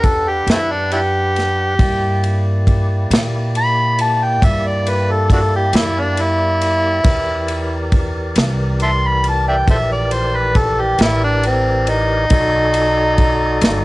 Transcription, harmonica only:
0, 0, Header, 1, 2, 480
1, 0, Start_track
1, 0, Tempo, 875912
1, 980, Time_signature, 12, 3, 24, 8
1, 7588, End_track
2, 0, Start_track
2, 0, Title_t, "Harmonica"
2, 0, Program_c, 0, 22
2, 30, Note_on_c, 0, 69, 86
2, 157, Note_on_c, 0, 67, 85
2, 165, Note_off_c, 0, 69, 0
2, 260, Note_off_c, 0, 67, 0
2, 281, Note_on_c, 0, 57, 68
2, 281, Note_on_c, 0, 60, 68
2, 281, Note_on_c, 0, 64, 97
2, 318, Note_off_c, 0, 57, 0
2, 328, Note_off_c, 0, 60, 0
2, 391, Note_on_c, 0, 62, 89
2, 400, Note_off_c, 0, 64, 0
2, 498, Note_off_c, 0, 62, 0
2, 507, Note_on_c, 0, 62, 78
2, 507, Note_on_c, 0, 64, 78
2, 507, Note_on_c, 0, 67, 111
2, 545, Note_off_c, 0, 64, 0
2, 546, Note_off_c, 0, 62, 0
2, 1443, Note_off_c, 0, 67, 0
2, 1959, Note_on_c, 0, 83, 101
2, 2183, Note_off_c, 0, 83, 0
2, 2198, Note_on_c, 0, 81, 93
2, 2322, Note_on_c, 0, 79, 92
2, 2330, Note_off_c, 0, 81, 0
2, 2437, Note_on_c, 0, 76, 87
2, 2445, Note_off_c, 0, 79, 0
2, 2559, Note_on_c, 0, 74, 79
2, 2567, Note_off_c, 0, 76, 0
2, 2677, Note_on_c, 0, 71, 84
2, 2685, Note_off_c, 0, 74, 0
2, 2805, Note_on_c, 0, 69, 84
2, 2813, Note_off_c, 0, 71, 0
2, 2906, Note_off_c, 0, 69, 0
2, 2917, Note_on_c, 0, 62, 63
2, 2917, Note_on_c, 0, 66, 63
2, 2917, Note_on_c, 0, 69, 90
2, 2955, Note_off_c, 0, 62, 0
2, 2962, Note_off_c, 0, 66, 0
2, 3022, Note_off_c, 0, 69, 0
2, 3047, Note_on_c, 0, 67, 91
2, 3163, Note_on_c, 0, 64, 90
2, 3171, Note_off_c, 0, 67, 0
2, 3285, Note_on_c, 0, 62, 96
2, 3294, Note_off_c, 0, 64, 0
2, 3408, Note_on_c, 0, 64, 108
2, 3416, Note_off_c, 0, 62, 0
2, 4334, Note_off_c, 0, 64, 0
2, 4838, Note_on_c, 0, 76, 65
2, 4838, Note_on_c, 0, 81, 65
2, 4838, Note_on_c, 0, 84, 92
2, 4875, Note_off_c, 0, 81, 0
2, 4881, Note_off_c, 0, 76, 0
2, 4973, Note_on_c, 0, 83, 94
2, 4981, Note_off_c, 0, 84, 0
2, 5070, Note_off_c, 0, 83, 0
2, 5091, Note_on_c, 0, 81, 85
2, 5190, Note_off_c, 0, 81, 0
2, 5197, Note_on_c, 0, 74, 67
2, 5197, Note_on_c, 0, 76, 67
2, 5197, Note_on_c, 0, 79, 96
2, 5232, Note_off_c, 0, 76, 0
2, 5235, Note_off_c, 0, 74, 0
2, 5302, Note_off_c, 0, 79, 0
2, 5317, Note_on_c, 0, 69, 59
2, 5317, Note_on_c, 0, 72, 59
2, 5317, Note_on_c, 0, 76, 84
2, 5353, Note_off_c, 0, 72, 0
2, 5357, Note_off_c, 0, 69, 0
2, 5422, Note_off_c, 0, 76, 0
2, 5438, Note_on_c, 0, 74, 92
2, 5552, Note_on_c, 0, 72, 89
2, 5561, Note_off_c, 0, 74, 0
2, 5678, Note_on_c, 0, 71, 92
2, 5687, Note_off_c, 0, 72, 0
2, 5797, Note_on_c, 0, 69, 90
2, 5805, Note_off_c, 0, 71, 0
2, 5924, Note_on_c, 0, 67, 89
2, 5932, Note_off_c, 0, 69, 0
2, 6026, Note_off_c, 0, 67, 0
2, 6040, Note_on_c, 0, 64, 91
2, 6144, Note_off_c, 0, 64, 0
2, 6159, Note_on_c, 0, 62, 96
2, 6263, Note_off_c, 0, 62, 0
2, 6285, Note_on_c, 0, 60, 96
2, 6517, Note_on_c, 0, 63, 108
2, 6525, Note_off_c, 0, 60, 0
2, 7588, Note_off_c, 0, 63, 0
2, 7588, End_track
0, 0, End_of_file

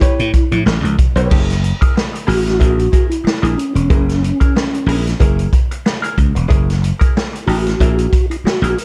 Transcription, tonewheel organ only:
0, 0, Header, 1, 2, 480
1, 0, Start_track
1, 0, Tempo, 648649
1, 969, Time_signature, 4, 2, 24, 8
1, 6548, End_track
2, 0, Start_track
2, 0, Title_t, "Tonewheel organ"
2, 0, Program_c, 0, 16
2, 0, Note_on_c, 0, 64, 88
2, 470, Note_off_c, 0, 64, 0
2, 1685, Note_on_c, 0, 66, 124
2, 2272, Note_off_c, 0, 66, 0
2, 2290, Note_on_c, 0, 64, 105
2, 2640, Note_on_c, 0, 61, 83
2, 2654, Note_off_c, 0, 64, 0
2, 2762, Note_off_c, 0, 61, 0
2, 2771, Note_on_c, 0, 61, 101
2, 3709, Note_off_c, 0, 61, 0
2, 5524, Note_on_c, 0, 66, 80
2, 6112, Note_off_c, 0, 66, 0
2, 6141, Note_on_c, 0, 64, 89
2, 6189, Note_off_c, 0, 64, 0
2, 6255, Note_on_c, 0, 66, 94
2, 6498, Note_on_c, 0, 70, 99
2, 6499, Note_off_c, 0, 66, 0
2, 6548, Note_off_c, 0, 70, 0
2, 6548, End_track
0, 0, End_of_file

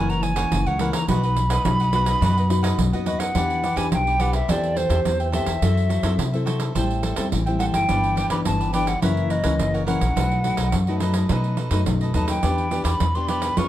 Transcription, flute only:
0, 0, Header, 1, 2, 480
1, 0, Start_track
1, 0, Key_signature, 1, "minor"
1, 0, Tempo, 567644
1, 915, Time_signature, 4, 2, 24, 8
1, 11571, End_track
2, 0, Start_track
2, 0, Title_t, "Flute"
2, 0, Program_c, 0, 73
2, 0, Note_on_c, 0, 80, 93
2, 81, Note_on_c, 0, 82, 91
2, 93, Note_off_c, 0, 80, 0
2, 191, Note_on_c, 0, 80, 93
2, 204, Note_off_c, 0, 82, 0
2, 566, Note_on_c, 0, 78, 82
2, 579, Note_off_c, 0, 80, 0
2, 789, Note_off_c, 0, 78, 0
2, 794, Note_on_c, 0, 82, 85
2, 906, Note_off_c, 0, 82, 0
2, 925, Note_on_c, 0, 83, 104
2, 2362, Note_off_c, 0, 83, 0
2, 2591, Note_on_c, 0, 75, 84
2, 2701, Note_on_c, 0, 78, 97
2, 2713, Note_off_c, 0, 75, 0
2, 3190, Note_on_c, 0, 80, 92
2, 3203, Note_off_c, 0, 78, 0
2, 3312, Note_off_c, 0, 80, 0
2, 3327, Note_on_c, 0, 79, 98
2, 3560, Note_on_c, 0, 78, 88
2, 3573, Note_off_c, 0, 79, 0
2, 3669, Note_off_c, 0, 78, 0
2, 3674, Note_on_c, 0, 76, 86
2, 3805, Note_on_c, 0, 74, 92
2, 3818, Note_off_c, 0, 76, 0
2, 4034, Note_on_c, 0, 72, 88
2, 4047, Note_off_c, 0, 74, 0
2, 4509, Note_off_c, 0, 72, 0
2, 4514, Note_on_c, 0, 76, 79
2, 5440, Note_off_c, 0, 76, 0
2, 6420, Note_on_c, 0, 78, 85
2, 6471, Note_off_c, 0, 78, 0
2, 6540, Note_on_c, 0, 79, 91
2, 6993, Note_off_c, 0, 79, 0
2, 7024, Note_on_c, 0, 83, 89
2, 7074, Note_off_c, 0, 83, 0
2, 7152, Note_on_c, 0, 81, 92
2, 7376, Note_off_c, 0, 81, 0
2, 7393, Note_on_c, 0, 79, 81
2, 7511, Note_on_c, 0, 78, 84
2, 7524, Note_off_c, 0, 79, 0
2, 7632, Note_off_c, 0, 78, 0
2, 7638, Note_on_c, 0, 76, 91
2, 7870, Note_on_c, 0, 75, 88
2, 7882, Note_off_c, 0, 76, 0
2, 8339, Note_off_c, 0, 75, 0
2, 8344, Note_on_c, 0, 78, 88
2, 9275, Note_off_c, 0, 78, 0
2, 10276, Note_on_c, 0, 81, 81
2, 10387, Note_off_c, 0, 81, 0
2, 10396, Note_on_c, 0, 79, 80
2, 10842, Note_off_c, 0, 79, 0
2, 10876, Note_on_c, 0, 83, 90
2, 11119, Note_on_c, 0, 84, 93
2, 11132, Note_off_c, 0, 83, 0
2, 11226, Note_on_c, 0, 83, 91
2, 11238, Note_off_c, 0, 84, 0
2, 11483, Note_on_c, 0, 85, 113
2, 11496, Note_off_c, 0, 83, 0
2, 11571, Note_off_c, 0, 85, 0
2, 11571, End_track
0, 0, End_of_file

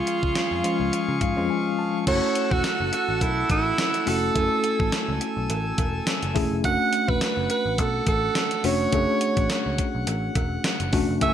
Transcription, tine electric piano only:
0, 0, Header, 1, 2, 480
1, 0, Start_track
1, 0, Key_signature, 3, "minor"
1, 0, Tempo, 571429
1, 1740, Time_signature, 4, 2, 24, 8
1, 9523, End_track
2, 0, Start_track
2, 0, Title_t, "Tine electric piano"
2, 0, Program_c, 0, 4
2, 0, Control_c, 0, 64, 127
2, 0, Note_on_c, 0, 53, 69
2, 0, Note_on_c, 0, 56, 69
2, 0, Note_on_c, 0, 61, 62
2, 0, Note_on_c, 0, 65, 79
2, 466, Note_off_c, 0, 53, 0
2, 469, Note_off_c, 0, 56, 0
2, 471, Note_off_c, 0, 61, 0
2, 473, Note_off_c, 0, 65, 0
2, 535, Note_on_c, 0, 53, 82
2, 539, Note_on_c, 0, 56, 75
2, 543, Note_on_c, 0, 61, 72
2, 547, Note_on_c, 0, 65, 91
2, 1021, Note_on_c, 0, 77, 61
2, 1095, Note_off_c, 0, 53, 0
2, 1097, Note_off_c, 0, 56, 0
2, 1099, Note_off_c, 0, 61, 0
2, 1101, Note_off_c, 0, 65, 0
2, 1147, Note_on_c, 0, 53, 78
2, 1151, Note_on_c, 0, 56, 77
2, 1155, Note_on_c, 0, 61, 69
2, 1157, Note_on_c, 0, 65, 83
2, 1244, Note_off_c, 0, 77, 0
2, 1261, Note_on_c, 0, 80, 65
2, 1484, Note_off_c, 0, 80, 0
2, 1500, Note_on_c, 0, 81, 68
2, 1693, Note_off_c, 0, 53, 0
2, 1695, Note_off_c, 0, 56, 0
2, 1697, Note_off_c, 0, 61, 0
2, 1698, Note_off_c, 0, 65, 0
2, 1723, Note_off_c, 0, 81, 0
2, 1736, Note_on_c, 0, 57, 72
2, 1740, Note_on_c, 0, 61, 67
2, 1743, Note_on_c, 0, 64, 67
2, 1746, Note_on_c, 0, 66, 81
2, 1750, Control_c, 0, 64, 0
2, 1878, Control_c, 0, 64, 127
2, 2627, Note_off_c, 0, 57, 0
2, 2629, Note_off_c, 0, 61, 0
2, 2630, Note_off_c, 0, 64, 0
2, 2632, Note_off_c, 0, 66, 0
2, 3413, Note_on_c, 0, 57, 75
2, 3416, Note_on_c, 0, 61, 66
2, 3421, Note_on_c, 0, 64, 68
2, 3422, Note_on_c, 0, 66, 81
2, 3639, Note_off_c, 0, 57, 0
2, 3640, Note_off_c, 0, 61, 0
2, 3643, Note_off_c, 0, 64, 0
2, 3643, Note_off_c, 0, 66, 0
2, 3653, Note_on_c, 0, 57, 77
2, 3656, Note_on_c, 0, 61, 68
2, 3658, Note_on_c, 0, 64, 70
2, 3662, Note_on_c, 0, 69, 84
2, 4545, Note_off_c, 0, 57, 0
2, 4547, Note_off_c, 0, 61, 0
2, 4548, Note_off_c, 0, 64, 0
2, 4550, Note_off_c, 0, 69, 0
2, 5331, Note_on_c, 0, 57, 91
2, 5334, Note_on_c, 0, 61, 83
2, 5338, Note_on_c, 0, 64, 83
2, 5342, Note_on_c, 0, 68, 98
2, 5558, Note_off_c, 0, 57, 0
2, 5559, Note_off_c, 0, 61, 0
2, 5561, Note_off_c, 0, 64, 0
2, 5563, Note_off_c, 0, 68, 0
2, 5574, Note_on_c, 0, 57, 74
2, 5578, Note_on_c, 0, 61, 69
2, 5581, Note_on_c, 0, 62, 70
2, 5585, Note_on_c, 0, 66, 85
2, 5592, Control_c, 0, 64, 0
2, 5751, Control_c, 0, 64, 127
2, 6466, Note_off_c, 0, 57, 0
2, 6468, Note_off_c, 0, 61, 0
2, 6470, Note_off_c, 0, 62, 0
2, 6471, Note_off_c, 0, 66, 0
2, 7254, Note_on_c, 0, 57, 76
2, 7258, Note_on_c, 0, 61, 74
2, 7262, Note_on_c, 0, 62, 73
2, 7263, Note_on_c, 0, 66, 87
2, 7479, Note_off_c, 0, 57, 0
2, 7481, Note_off_c, 0, 61, 0
2, 7483, Note_off_c, 0, 62, 0
2, 7484, Note_off_c, 0, 66, 0
2, 7496, Note_on_c, 0, 57, 78
2, 7499, Note_on_c, 0, 61, 68
2, 7503, Note_on_c, 0, 62, 74
2, 7506, Note_on_c, 0, 68, 82
2, 8387, Note_off_c, 0, 57, 0
2, 8388, Note_off_c, 0, 61, 0
2, 8390, Note_off_c, 0, 62, 0
2, 8392, Note_off_c, 0, 68, 0
2, 9174, Note_on_c, 0, 57, 86
2, 9179, Note_on_c, 0, 61, 80
2, 9182, Note_on_c, 0, 62, 78
2, 9186, Note_on_c, 0, 66, 96
2, 9399, Note_off_c, 0, 57, 0
2, 9402, Note_off_c, 0, 61, 0
2, 9403, Note_off_c, 0, 62, 0
2, 9405, Note_off_c, 0, 66, 0
2, 9418, Note_on_c, 0, 57, 76
2, 9419, Note_on_c, 0, 61, 72
2, 9423, Note_on_c, 0, 64, 66
2, 9427, Note_on_c, 0, 67, 66
2, 9429, Control_c, 0, 64, 0
2, 9483, Note_on_c, 0, 80, 84
2, 9484, Note_off_c, 0, 67, 0
2, 9523, Note_off_c, 0, 57, 0
2, 9523, Note_off_c, 0, 61, 0
2, 9523, Note_off_c, 0, 64, 0
2, 9523, Note_off_c, 0, 80, 0
2, 9523, End_track
0, 0, End_of_file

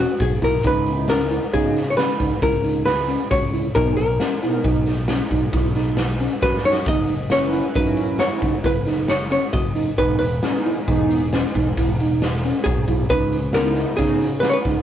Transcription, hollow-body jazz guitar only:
0, 0, Header, 1, 2, 480
1, 0, Start_track
1, 0, Tempo, 445104
1, 693, Time_signature, 7, 2, 24, 8
1, 15982, End_track
2, 0, Start_track
2, 0, Title_t, "Hollow-body jazz guitar"
2, 0, Program_c, 0, 26
2, 0, Note_on_c, 0, 66, 71
2, 201, Note_off_c, 0, 66, 0
2, 236, Note_on_c, 0, 68, 78
2, 472, Note_off_c, 0, 68, 0
2, 477, Note_on_c, 0, 70, 87
2, 712, Note_off_c, 0, 70, 0
2, 721, Note_on_c, 0, 71, 99
2, 1177, Note_off_c, 0, 71, 0
2, 1181, Note_on_c, 0, 70, 89
2, 1624, Note_off_c, 0, 70, 0
2, 1655, Note_on_c, 0, 68, 81
2, 2031, Note_off_c, 0, 68, 0
2, 2053, Note_on_c, 0, 73, 57
2, 2120, Note_off_c, 0, 73, 0
2, 2124, Note_on_c, 0, 71, 84
2, 2615, Note_off_c, 0, 71, 0
2, 2619, Note_on_c, 0, 70, 83
2, 3074, Note_off_c, 0, 70, 0
2, 3079, Note_on_c, 0, 71, 73
2, 3564, Note_off_c, 0, 71, 0
2, 3568, Note_on_c, 0, 73, 80
2, 4016, Note_off_c, 0, 73, 0
2, 4043, Note_on_c, 0, 70, 85
2, 4265, Note_off_c, 0, 70, 0
2, 4278, Note_on_c, 0, 70, 71
2, 4796, Note_off_c, 0, 70, 0
2, 4796, Note_on_c, 0, 68, 71
2, 4961, Note_off_c, 0, 68, 0
2, 6929, Note_on_c, 0, 71, 76
2, 7152, Note_off_c, 0, 71, 0
2, 7175, Note_on_c, 0, 73, 85
2, 7416, Note_off_c, 0, 73, 0
2, 7420, Note_on_c, 0, 75, 104
2, 7861, Note_off_c, 0, 75, 0
2, 7890, Note_on_c, 0, 73, 88
2, 8336, Note_off_c, 0, 73, 0
2, 8368, Note_on_c, 0, 71, 76
2, 8839, Note_on_c, 0, 73, 75
2, 8863, Note_off_c, 0, 71, 0
2, 9336, Note_on_c, 0, 71, 79
2, 9338, Note_off_c, 0, 73, 0
2, 9808, Note_on_c, 0, 73, 75
2, 9827, Note_off_c, 0, 71, 0
2, 10036, Note_off_c, 0, 73, 0
2, 10049, Note_on_c, 0, 73, 73
2, 10273, Note_off_c, 0, 73, 0
2, 10277, Note_on_c, 0, 75, 87
2, 10728, Note_off_c, 0, 75, 0
2, 10764, Note_on_c, 0, 71, 87
2, 10973, Note_off_c, 0, 71, 0
2, 10986, Note_on_c, 0, 71, 72
2, 11674, Note_off_c, 0, 71, 0
2, 13629, Note_on_c, 0, 68, 81
2, 14122, Note_off_c, 0, 68, 0
2, 14126, Note_on_c, 0, 71, 109
2, 14601, Note_off_c, 0, 71, 0
2, 14605, Note_on_c, 0, 70, 93
2, 15054, Note_off_c, 0, 70, 0
2, 15061, Note_on_c, 0, 68, 76
2, 15526, Note_off_c, 0, 68, 0
2, 15530, Note_on_c, 0, 71, 81
2, 15628, Note_off_c, 0, 71, 0
2, 15631, Note_on_c, 0, 73, 76
2, 15674, Note_on_c, 0, 71, 87
2, 15713, Note_off_c, 0, 73, 0
2, 15982, Note_off_c, 0, 71, 0
2, 15982, End_track
0, 0, End_of_file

